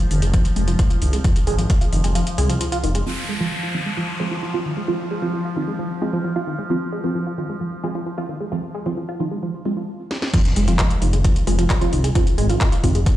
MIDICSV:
0, 0, Header, 1, 8, 480
1, 0, Start_track
1, 0, Key_signature, -4, "minor"
1, 0, Tempo, 454545
1, 1315, Time_signature, 4, 2, 24, 8
1, 13905, End_track
2, 0, Start_track
2, 0, Title_t, "Synth stab"
2, 0, Program_c, 0, 62
2, 3234, Note_on_c, 0, 53, 90
2, 3234, Note_on_c, 0, 60, 85
2, 3234, Note_on_c, 0, 65, 101
2, 3378, Note_off_c, 0, 53, 0
2, 3378, Note_off_c, 0, 60, 0
2, 3378, Note_off_c, 0, 65, 0
2, 3595, Note_on_c, 0, 53, 86
2, 3595, Note_on_c, 0, 60, 79
2, 3595, Note_on_c, 0, 65, 96
2, 3738, Note_off_c, 0, 53, 0
2, 3738, Note_off_c, 0, 60, 0
2, 3738, Note_off_c, 0, 65, 0
2, 3954, Note_on_c, 0, 53, 78
2, 3954, Note_on_c, 0, 60, 71
2, 3954, Note_on_c, 0, 65, 85
2, 4098, Note_off_c, 0, 53, 0
2, 4099, Note_off_c, 0, 60, 0
2, 4099, Note_off_c, 0, 65, 0
2, 4434, Note_on_c, 0, 53, 88
2, 4434, Note_on_c, 0, 60, 76
2, 4434, Note_on_c, 0, 65, 91
2, 4578, Note_off_c, 0, 53, 0
2, 4579, Note_off_c, 0, 60, 0
2, 4579, Note_off_c, 0, 65, 0
2, 4794, Note_on_c, 0, 53, 91
2, 4795, Note_on_c, 0, 60, 85
2, 4795, Note_on_c, 0, 65, 101
2, 4938, Note_off_c, 0, 53, 0
2, 4938, Note_off_c, 0, 60, 0
2, 4938, Note_off_c, 0, 65, 0
2, 5155, Note_on_c, 0, 53, 87
2, 5155, Note_on_c, 0, 60, 83
2, 5155, Note_on_c, 0, 65, 102
2, 5299, Note_off_c, 0, 53, 0
2, 5299, Note_off_c, 0, 60, 0
2, 5299, Note_off_c, 0, 65, 0
2, 5515, Note_on_c, 0, 53, 86
2, 5515, Note_on_c, 0, 60, 82
2, 5516, Note_on_c, 0, 65, 97
2, 5658, Note_off_c, 0, 53, 0
2, 5659, Note_off_c, 0, 60, 0
2, 5659, Note_off_c, 0, 65, 0
2, 5874, Note_on_c, 0, 60, 69
2, 5875, Note_on_c, 0, 53, 76
2, 5875, Note_on_c, 0, 65, 83
2, 6019, Note_off_c, 0, 53, 0
2, 6019, Note_off_c, 0, 60, 0
2, 6019, Note_off_c, 0, 65, 0
2, 6355, Note_on_c, 0, 53, 85
2, 6355, Note_on_c, 0, 60, 79
2, 6355, Note_on_c, 0, 65, 97
2, 6499, Note_off_c, 0, 53, 0
2, 6499, Note_off_c, 0, 60, 0
2, 6499, Note_off_c, 0, 65, 0
2, 6715, Note_on_c, 0, 53, 92
2, 6715, Note_on_c, 0, 60, 81
2, 6715, Note_on_c, 0, 65, 103
2, 6859, Note_off_c, 0, 53, 0
2, 6859, Note_off_c, 0, 60, 0
2, 6859, Note_off_c, 0, 65, 0
2, 7075, Note_on_c, 0, 53, 92
2, 7075, Note_on_c, 0, 60, 83
2, 7075, Note_on_c, 0, 65, 101
2, 7219, Note_off_c, 0, 53, 0
2, 7219, Note_off_c, 0, 60, 0
2, 7219, Note_off_c, 0, 65, 0
2, 7435, Note_on_c, 0, 53, 86
2, 7435, Note_on_c, 0, 60, 78
2, 7435, Note_on_c, 0, 65, 94
2, 7578, Note_off_c, 0, 53, 0
2, 7578, Note_off_c, 0, 60, 0
2, 7578, Note_off_c, 0, 65, 0
2, 7795, Note_on_c, 0, 53, 74
2, 7795, Note_on_c, 0, 60, 71
2, 7795, Note_on_c, 0, 65, 81
2, 7939, Note_off_c, 0, 53, 0
2, 7939, Note_off_c, 0, 60, 0
2, 7939, Note_off_c, 0, 65, 0
2, 8275, Note_on_c, 0, 53, 81
2, 8275, Note_on_c, 0, 60, 79
2, 8275, Note_on_c, 0, 65, 94
2, 8419, Note_off_c, 0, 53, 0
2, 8419, Note_off_c, 0, 60, 0
2, 8419, Note_off_c, 0, 65, 0
2, 8635, Note_on_c, 0, 60, 83
2, 8635, Note_on_c, 0, 65, 97
2, 8636, Note_on_c, 0, 53, 91
2, 8779, Note_off_c, 0, 53, 0
2, 8779, Note_off_c, 0, 60, 0
2, 8779, Note_off_c, 0, 65, 0
2, 8996, Note_on_c, 0, 53, 91
2, 8996, Note_on_c, 0, 60, 84
2, 8996, Note_on_c, 0, 65, 99
2, 9139, Note_off_c, 0, 53, 0
2, 9139, Note_off_c, 0, 60, 0
2, 9139, Note_off_c, 0, 65, 0
2, 9356, Note_on_c, 0, 65, 92
2, 9357, Note_on_c, 0, 53, 85
2, 9357, Note_on_c, 0, 60, 81
2, 9499, Note_off_c, 0, 53, 0
2, 9499, Note_off_c, 0, 60, 0
2, 9499, Note_off_c, 0, 65, 0
2, 9715, Note_on_c, 0, 65, 84
2, 9716, Note_on_c, 0, 53, 76
2, 9716, Note_on_c, 0, 60, 68
2, 9859, Note_off_c, 0, 53, 0
2, 9859, Note_off_c, 0, 60, 0
2, 9859, Note_off_c, 0, 65, 0
2, 10196, Note_on_c, 0, 53, 88
2, 10196, Note_on_c, 0, 60, 79
2, 10196, Note_on_c, 0, 65, 91
2, 10339, Note_off_c, 0, 53, 0
2, 10339, Note_off_c, 0, 60, 0
2, 10339, Note_off_c, 0, 65, 0
2, 10916, Note_on_c, 0, 53, 93
2, 10916, Note_on_c, 0, 60, 86
2, 10916, Note_on_c, 0, 65, 107
2, 11059, Note_off_c, 0, 53, 0
2, 11059, Note_off_c, 0, 60, 0
2, 11059, Note_off_c, 0, 65, 0
2, 11276, Note_on_c, 0, 53, 86
2, 11276, Note_on_c, 0, 60, 82
2, 11276, Note_on_c, 0, 65, 96
2, 11419, Note_off_c, 0, 53, 0
2, 11419, Note_off_c, 0, 60, 0
2, 11419, Note_off_c, 0, 65, 0
2, 11635, Note_on_c, 0, 53, 75
2, 11635, Note_on_c, 0, 60, 67
2, 11635, Note_on_c, 0, 65, 81
2, 11779, Note_off_c, 0, 53, 0
2, 11779, Note_off_c, 0, 60, 0
2, 11779, Note_off_c, 0, 65, 0
2, 12115, Note_on_c, 0, 53, 86
2, 12115, Note_on_c, 0, 60, 76
2, 12115, Note_on_c, 0, 65, 94
2, 12259, Note_off_c, 0, 53, 0
2, 12259, Note_off_c, 0, 60, 0
2, 12259, Note_off_c, 0, 65, 0
2, 12475, Note_on_c, 0, 53, 98
2, 12475, Note_on_c, 0, 60, 92
2, 12475, Note_on_c, 0, 65, 107
2, 12618, Note_off_c, 0, 53, 0
2, 12618, Note_off_c, 0, 60, 0
2, 12618, Note_off_c, 0, 65, 0
2, 12834, Note_on_c, 0, 53, 91
2, 12834, Note_on_c, 0, 60, 86
2, 12834, Note_on_c, 0, 65, 105
2, 12978, Note_off_c, 0, 65, 0
2, 12979, Note_off_c, 0, 53, 0
2, 12979, Note_off_c, 0, 60, 0
2, 13194, Note_on_c, 0, 65, 99
2, 13195, Note_on_c, 0, 53, 87
2, 13195, Note_on_c, 0, 60, 85
2, 13338, Note_off_c, 0, 53, 0
2, 13338, Note_off_c, 0, 60, 0
2, 13338, Note_off_c, 0, 65, 0
2, 13555, Note_on_c, 0, 53, 75
2, 13555, Note_on_c, 0, 60, 73
2, 13555, Note_on_c, 0, 65, 85
2, 13699, Note_off_c, 0, 53, 0
2, 13699, Note_off_c, 0, 60, 0
2, 13699, Note_off_c, 0, 65, 0
2, 13905, End_track
3, 0, Start_track
3, 0, Title_t, "Synth arpeggio sound"
3, 0, Program_c, 1, 84
3, 115, Note_on_c, 1, 51, 76
3, 174, Note_off_c, 1, 51, 0
3, 236, Note_on_c, 1, 56, 84
3, 294, Note_off_c, 1, 56, 0
3, 355, Note_on_c, 1, 53, 100
3, 414, Note_off_c, 1, 53, 0
3, 594, Note_on_c, 1, 56, 97
3, 684, Note_off_c, 1, 56, 0
3, 715, Note_on_c, 1, 53, 106
3, 774, Note_off_c, 1, 53, 0
3, 834, Note_on_c, 1, 53, 82
3, 870, Note_off_c, 1, 53, 0
3, 952, Note_on_c, 1, 65, 79
3, 1013, Note_off_c, 1, 65, 0
3, 1073, Note_on_c, 1, 51, 72
3, 1133, Note_off_c, 1, 51, 0
3, 1195, Note_on_c, 1, 56, 76
3, 1254, Note_off_c, 1, 56, 0
3, 1314, Note_on_c, 1, 53, 106
3, 1374, Note_off_c, 1, 53, 0
3, 1554, Note_on_c, 1, 56, 104
3, 1643, Note_off_c, 1, 56, 0
3, 1674, Note_on_c, 1, 53, 104
3, 1734, Note_off_c, 1, 53, 0
3, 1794, Note_on_c, 1, 53, 90
3, 1830, Note_off_c, 1, 53, 0
3, 1913, Note_on_c, 1, 65, 74
3, 1973, Note_off_c, 1, 65, 0
3, 2034, Note_on_c, 1, 51, 79
3, 2094, Note_off_c, 1, 51, 0
3, 2154, Note_on_c, 1, 56, 82
3, 2214, Note_off_c, 1, 56, 0
3, 2273, Note_on_c, 1, 53, 98
3, 2333, Note_off_c, 1, 53, 0
3, 2514, Note_on_c, 1, 56, 102
3, 2603, Note_off_c, 1, 56, 0
3, 2635, Note_on_c, 1, 53, 105
3, 2694, Note_off_c, 1, 53, 0
3, 2753, Note_on_c, 1, 53, 82
3, 2789, Note_off_c, 1, 53, 0
3, 2874, Note_on_c, 1, 65, 81
3, 2933, Note_off_c, 1, 65, 0
3, 2994, Note_on_c, 1, 51, 75
3, 3054, Note_off_c, 1, 51, 0
3, 3115, Note_on_c, 1, 56, 79
3, 3174, Note_off_c, 1, 56, 0
3, 3234, Note_on_c, 1, 53, 96
3, 3294, Note_off_c, 1, 53, 0
3, 3474, Note_on_c, 1, 56, 102
3, 3563, Note_off_c, 1, 56, 0
3, 3594, Note_on_c, 1, 53, 99
3, 3654, Note_off_c, 1, 53, 0
3, 3715, Note_on_c, 1, 53, 87
3, 3750, Note_off_c, 1, 53, 0
3, 3836, Note_on_c, 1, 65, 73
3, 3894, Note_off_c, 1, 65, 0
3, 3955, Note_on_c, 1, 51, 75
3, 4014, Note_off_c, 1, 51, 0
3, 4076, Note_on_c, 1, 56, 76
3, 4135, Note_off_c, 1, 56, 0
3, 4195, Note_on_c, 1, 53, 99
3, 4254, Note_off_c, 1, 53, 0
3, 4436, Note_on_c, 1, 56, 98
3, 4524, Note_off_c, 1, 56, 0
3, 4556, Note_on_c, 1, 53, 99
3, 4615, Note_off_c, 1, 53, 0
3, 4676, Note_on_c, 1, 53, 82
3, 4711, Note_off_c, 1, 53, 0
3, 4794, Note_on_c, 1, 65, 78
3, 4854, Note_off_c, 1, 65, 0
3, 4915, Note_on_c, 1, 51, 71
3, 4974, Note_off_c, 1, 51, 0
3, 5036, Note_on_c, 1, 56, 76
3, 5094, Note_off_c, 1, 56, 0
3, 5155, Note_on_c, 1, 53, 102
3, 5214, Note_off_c, 1, 53, 0
3, 5395, Note_on_c, 1, 56, 98
3, 5484, Note_off_c, 1, 56, 0
3, 5515, Note_on_c, 1, 53, 102
3, 5574, Note_off_c, 1, 53, 0
3, 5635, Note_on_c, 1, 53, 88
3, 5670, Note_off_c, 1, 53, 0
3, 5755, Note_on_c, 1, 65, 71
3, 5814, Note_off_c, 1, 65, 0
3, 5874, Note_on_c, 1, 51, 76
3, 5934, Note_off_c, 1, 51, 0
3, 5995, Note_on_c, 1, 56, 76
3, 6054, Note_off_c, 1, 56, 0
3, 6114, Note_on_c, 1, 53, 95
3, 6174, Note_off_c, 1, 53, 0
3, 6354, Note_on_c, 1, 56, 101
3, 6444, Note_off_c, 1, 56, 0
3, 6474, Note_on_c, 1, 53, 102
3, 6534, Note_off_c, 1, 53, 0
3, 6593, Note_on_c, 1, 53, 82
3, 6629, Note_off_c, 1, 53, 0
3, 6714, Note_on_c, 1, 65, 80
3, 6773, Note_off_c, 1, 65, 0
3, 6835, Note_on_c, 1, 51, 74
3, 6894, Note_off_c, 1, 51, 0
3, 6954, Note_on_c, 1, 56, 77
3, 7014, Note_off_c, 1, 56, 0
3, 7073, Note_on_c, 1, 53, 100
3, 7133, Note_off_c, 1, 53, 0
3, 7313, Note_on_c, 1, 56, 104
3, 7403, Note_off_c, 1, 56, 0
3, 7433, Note_on_c, 1, 53, 95
3, 7493, Note_off_c, 1, 53, 0
3, 7553, Note_on_c, 1, 53, 85
3, 7589, Note_off_c, 1, 53, 0
3, 7673, Note_on_c, 1, 65, 72
3, 7733, Note_off_c, 1, 65, 0
3, 7793, Note_on_c, 1, 51, 72
3, 7853, Note_off_c, 1, 51, 0
3, 7915, Note_on_c, 1, 56, 79
3, 7974, Note_off_c, 1, 56, 0
3, 8035, Note_on_c, 1, 53, 94
3, 8094, Note_off_c, 1, 53, 0
3, 8275, Note_on_c, 1, 56, 99
3, 8364, Note_off_c, 1, 56, 0
3, 8395, Note_on_c, 1, 53, 102
3, 8454, Note_off_c, 1, 53, 0
3, 8515, Note_on_c, 1, 53, 82
3, 8550, Note_off_c, 1, 53, 0
3, 8635, Note_on_c, 1, 65, 80
3, 8694, Note_off_c, 1, 65, 0
3, 8756, Note_on_c, 1, 51, 69
3, 8814, Note_off_c, 1, 51, 0
3, 8876, Note_on_c, 1, 56, 79
3, 8934, Note_off_c, 1, 56, 0
3, 8995, Note_on_c, 1, 53, 104
3, 9054, Note_off_c, 1, 53, 0
3, 9236, Note_on_c, 1, 56, 101
3, 9324, Note_off_c, 1, 56, 0
3, 9356, Note_on_c, 1, 53, 102
3, 9414, Note_off_c, 1, 53, 0
3, 9475, Note_on_c, 1, 53, 86
3, 9510, Note_off_c, 1, 53, 0
3, 9595, Note_on_c, 1, 65, 74
3, 9654, Note_off_c, 1, 65, 0
3, 9715, Note_on_c, 1, 51, 78
3, 9774, Note_off_c, 1, 51, 0
3, 9836, Note_on_c, 1, 56, 81
3, 9894, Note_off_c, 1, 56, 0
3, 9955, Note_on_c, 1, 53, 96
3, 10014, Note_off_c, 1, 53, 0
3, 10195, Note_on_c, 1, 56, 95
3, 10284, Note_off_c, 1, 56, 0
3, 10316, Note_on_c, 1, 53, 98
3, 10374, Note_off_c, 1, 53, 0
3, 10915, Note_on_c, 1, 53, 100
3, 10974, Note_off_c, 1, 53, 0
3, 11155, Note_on_c, 1, 56, 100
3, 11244, Note_off_c, 1, 56, 0
3, 11275, Note_on_c, 1, 53, 106
3, 11334, Note_off_c, 1, 53, 0
3, 11394, Note_on_c, 1, 53, 90
3, 11430, Note_off_c, 1, 53, 0
3, 11515, Note_on_c, 1, 65, 71
3, 11574, Note_off_c, 1, 65, 0
3, 11634, Note_on_c, 1, 51, 75
3, 11694, Note_off_c, 1, 51, 0
3, 11754, Note_on_c, 1, 56, 79
3, 11814, Note_off_c, 1, 56, 0
3, 11873, Note_on_c, 1, 53, 94
3, 11933, Note_off_c, 1, 53, 0
3, 12114, Note_on_c, 1, 56, 100
3, 12203, Note_off_c, 1, 56, 0
3, 12234, Note_on_c, 1, 53, 104
3, 12293, Note_off_c, 1, 53, 0
3, 12354, Note_on_c, 1, 53, 84
3, 12390, Note_off_c, 1, 53, 0
3, 12474, Note_on_c, 1, 65, 80
3, 12534, Note_off_c, 1, 65, 0
3, 12593, Note_on_c, 1, 51, 75
3, 12653, Note_off_c, 1, 51, 0
3, 12713, Note_on_c, 1, 56, 77
3, 12773, Note_off_c, 1, 56, 0
3, 12832, Note_on_c, 1, 53, 102
3, 12892, Note_off_c, 1, 53, 0
3, 13072, Note_on_c, 1, 56, 106
3, 13163, Note_off_c, 1, 56, 0
3, 13194, Note_on_c, 1, 53, 100
3, 13253, Note_off_c, 1, 53, 0
3, 13313, Note_on_c, 1, 53, 87
3, 13350, Note_off_c, 1, 53, 0
3, 13434, Note_on_c, 1, 65, 73
3, 13493, Note_off_c, 1, 65, 0
3, 13554, Note_on_c, 1, 51, 81
3, 13614, Note_off_c, 1, 51, 0
3, 13674, Note_on_c, 1, 56, 81
3, 13734, Note_off_c, 1, 56, 0
3, 13795, Note_on_c, 1, 53, 98
3, 13854, Note_off_c, 1, 53, 0
3, 13905, End_track
4, 0, Start_track
4, 0, Title_t, "Synth drone"
4, 0, Program_c, 2, 95
4, 0, Note_on_c, 2, 53, 77
4, 3221, Note_off_c, 2, 53, 0
4, 3234, Note_on_c, 2, 53, 75
4, 10434, Note_off_c, 2, 53, 0
4, 13905, End_track
5, 0, Start_track
5, 0, Title_t, "Detuned saw bass"
5, 0, Program_c, 3, 39
5, 115, Note_on_c, 3, 29, 84
5, 212, Note_off_c, 3, 29, 0
5, 235, Note_on_c, 3, 29, 99
5, 428, Note_off_c, 3, 29, 0
5, 594, Note_on_c, 3, 29, 102
5, 788, Note_off_c, 3, 29, 0
5, 1073, Note_on_c, 3, 36, 86
5, 1267, Note_off_c, 3, 36, 0
5, 1554, Note_on_c, 3, 32, 95
5, 1748, Note_off_c, 3, 32, 0
5, 2034, Note_on_c, 3, 29, 98
5, 2131, Note_off_c, 3, 29, 0
5, 2154, Note_on_c, 3, 29, 98
5, 2348, Note_off_c, 3, 29, 0
5, 2514, Note_on_c, 3, 36, 96
5, 2707, Note_off_c, 3, 36, 0
5, 2994, Note_on_c, 3, 29, 97
5, 3187, Note_off_c, 3, 29, 0
5, 11156, Note_on_c, 3, 29, 99
5, 11348, Note_off_c, 3, 29, 0
5, 11635, Note_on_c, 3, 29, 85
5, 11732, Note_off_c, 3, 29, 0
5, 11755, Note_on_c, 3, 29, 104
5, 11948, Note_off_c, 3, 29, 0
5, 12115, Note_on_c, 3, 29, 103
5, 12308, Note_off_c, 3, 29, 0
5, 12596, Note_on_c, 3, 36, 90
5, 12788, Note_off_c, 3, 36, 0
5, 13075, Note_on_c, 3, 32, 95
5, 13268, Note_off_c, 3, 32, 0
5, 13554, Note_on_c, 3, 29, 103
5, 13651, Note_off_c, 3, 29, 0
5, 13676, Note_on_c, 3, 29, 96
5, 13868, Note_off_c, 3, 29, 0
5, 13905, End_track
6, 0, Start_track
6, 0, Title_t, "Downlifter"
6, 0, Program_c, 4, 103
6, 3234, Note_on_c, 4, 60, 75
6, 7074, Note_off_c, 4, 60, 0
6, 13905, End_track
7, 0, Start_track
7, 0, Title_t, "Impact"
7, 0, Program_c, 5, 103
7, 10915, Note_on_c, 5, 60, 80
7, 12835, Note_off_c, 5, 60, 0
7, 13905, End_track
8, 0, Start_track
8, 0, Title_t, "Drums"
8, 114, Note_on_c, 9, 46, 90
8, 220, Note_off_c, 9, 46, 0
8, 234, Note_on_c, 9, 42, 53
8, 340, Note_off_c, 9, 42, 0
8, 354, Note_on_c, 9, 36, 117
8, 354, Note_on_c, 9, 42, 93
8, 460, Note_off_c, 9, 36, 0
8, 460, Note_off_c, 9, 42, 0
8, 475, Note_on_c, 9, 42, 53
8, 580, Note_off_c, 9, 42, 0
8, 594, Note_on_c, 9, 46, 100
8, 699, Note_off_c, 9, 46, 0
8, 714, Note_on_c, 9, 42, 53
8, 820, Note_off_c, 9, 42, 0
8, 834, Note_on_c, 9, 36, 112
8, 834, Note_on_c, 9, 42, 96
8, 940, Note_off_c, 9, 36, 0
8, 940, Note_off_c, 9, 42, 0
8, 954, Note_on_c, 9, 42, 50
8, 1059, Note_off_c, 9, 42, 0
8, 1074, Note_on_c, 9, 46, 92
8, 1179, Note_off_c, 9, 46, 0
8, 1194, Note_on_c, 9, 42, 52
8, 1300, Note_off_c, 9, 42, 0
8, 1314, Note_on_c, 9, 36, 117
8, 1314, Note_on_c, 9, 42, 96
8, 1419, Note_off_c, 9, 42, 0
8, 1420, Note_off_c, 9, 36, 0
8, 1434, Note_on_c, 9, 42, 53
8, 1540, Note_off_c, 9, 42, 0
8, 1553, Note_on_c, 9, 46, 100
8, 1658, Note_off_c, 9, 46, 0
8, 1674, Note_on_c, 9, 42, 52
8, 1779, Note_off_c, 9, 42, 0
8, 1793, Note_on_c, 9, 42, 94
8, 1794, Note_on_c, 9, 36, 114
8, 1898, Note_off_c, 9, 42, 0
8, 1899, Note_off_c, 9, 36, 0
8, 1913, Note_on_c, 9, 42, 55
8, 2019, Note_off_c, 9, 42, 0
8, 2033, Note_on_c, 9, 46, 87
8, 2139, Note_off_c, 9, 46, 0
8, 2155, Note_on_c, 9, 42, 54
8, 2260, Note_off_c, 9, 42, 0
8, 2274, Note_on_c, 9, 42, 97
8, 2379, Note_off_c, 9, 42, 0
8, 2395, Note_on_c, 9, 42, 56
8, 2500, Note_off_c, 9, 42, 0
8, 2514, Note_on_c, 9, 46, 101
8, 2620, Note_off_c, 9, 46, 0
8, 2635, Note_on_c, 9, 42, 55
8, 2741, Note_off_c, 9, 42, 0
8, 2754, Note_on_c, 9, 42, 98
8, 2859, Note_off_c, 9, 42, 0
8, 2874, Note_on_c, 9, 42, 55
8, 2980, Note_off_c, 9, 42, 0
8, 2995, Note_on_c, 9, 46, 86
8, 3100, Note_off_c, 9, 46, 0
8, 3114, Note_on_c, 9, 42, 53
8, 3220, Note_off_c, 9, 42, 0
8, 10674, Note_on_c, 9, 38, 57
8, 10780, Note_off_c, 9, 38, 0
8, 10795, Note_on_c, 9, 38, 70
8, 10900, Note_off_c, 9, 38, 0
8, 10915, Note_on_c, 9, 36, 127
8, 10915, Note_on_c, 9, 42, 96
8, 10915, Note_on_c, 9, 49, 106
8, 11020, Note_off_c, 9, 36, 0
8, 11020, Note_off_c, 9, 42, 0
8, 11020, Note_off_c, 9, 49, 0
8, 11035, Note_on_c, 9, 42, 57
8, 11140, Note_off_c, 9, 42, 0
8, 11154, Note_on_c, 9, 46, 105
8, 11260, Note_off_c, 9, 46, 0
8, 11275, Note_on_c, 9, 42, 50
8, 11381, Note_off_c, 9, 42, 0
8, 11394, Note_on_c, 9, 36, 116
8, 11394, Note_on_c, 9, 39, 127
8, 11394, Note_on_c, 9, 42, 95
8, 11499, Note_off_c, 9, 39, 0
8, 11499, Note_off_c, 9, 42, 0
8, 11500, Note_off_c, 9, 36, 0
8, 11515, Note_on_c, 9, 42, 59
8, 11620, Note_off_c, 9, 42, 0
8, 11635, Note_on_c, 9, 46, 93
8, 11740, Note_off_c, 9, 46, 0
8, 11754, Note_on_c, 9, 42, 56
8, 11860, Note_off_c, 9, 42, 0
8, 11874, Note_on_c, 9, 36, 117
8, 11875, Note_on_c, 9, 42, 102
8, 11980, Note_off_c, 9, 36, 0
8, 11980, Note_off_c, 9, 42, 0
8, 11996, Note_on_c, 9, 42, 55
8, 12101, Note_off_c, 9, 42, 0
8, 12115, Note_on_c, 9, 46, 107
8, 12220, Note_off_c, 9, 46, 0
8, 12236, Note_on_c, 9, 42, 56
8, 12341, Note_off_c, 9, 42, 0
8, 12354, Note_on_c, 9, 36, 117
8, 12355, Note_on_c, 9, 39, 127
8, 12355, Note_on_c, 9, 42, 95
8, 12460, Note_off_c, 9, 36, 0
8, 12460, Note_off_c, 9, 39, 0
8, 12460, Note_off_c, 9, 42, 0
8, 12475, Note_on_c, 9, 42, 52
8, 12581, Note_off_c, 9, 42, 0
8, 12595, Note_on_c, 9, 46, 90
8, 12701, Note_off_c, 9, 46, 0
8, 12716, Note_on_c, 9, 42, 57
8, 12821, Note_off_c, 9, 42, 0
8, 12834, Note_on_c, 9, 36, 127
8, 12835, Note_on_c, 9, 42, 101
8, 12940, Note_off_c, 9, 36, 0
8, 12940, Note_off_c, 9, 42, 0
8, 12955, Note_on_c, 9, 42, 57
8, 13061, Note_off_c, 9, 42, 0
8, 13075, Note_on_c, 9, 46, 110
8, 13180, Note_off_c, 9, 46, 0
8, 13195, Note_on_c, 9, 42, 52
8, 13300, Note_off_c, 9, 42, 0
8, 13314, Note_on_c, 9, 36, 127
8, 13315, Note_on_c, 9, 39, 118
8, 13315, Note_on_c, 9, 42, 101
8, 13420, Note_off_c, 9, 36, 0
8, 13421, Note_off_c, 9, 39, 0
8, 13421, Note_off_c, 9, 42, 0
8, 13435, Note_on_c, 9, 42, 57
8, 13541, Note_off_c, 9, 42, 0
8, 13554, Note_on_c, 9, 36, 68
8, 13555, Note_on_c, 9, 46, 101
8, 13660, Note_off_c, 9, 36, 0
8, 13660, Note_off_c, 9, 46, 0
8, 13675, Note_on_c, 9, 42, 54
8, 13781, Note_off_c, 9, 42, 0
8, 13794, Note_on_c, 9, 36, 127
8, 13795, Note_on_c, 9, 42, 107
8, 13900, Note_off_c, 9, 36, 0
8, 13901, Note_off_c, 9, 42, 0
8, 13905, End_track
0, 0, End_of_file